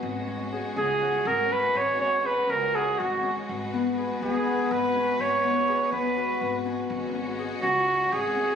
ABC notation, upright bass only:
X:1
M:7/8
L:1/8
Q:1/4=123
K:F#mix
V:1 name="Upright bass" clef=bass
G,,,3 C,,2 G,,,2 | G,,,3 C,,2 G,,,2 | G,,,3 D,,2 G,,,2 | G,,,3 D,,2 G,,,2 |
G,,,3 C,,2 G,,,2 |]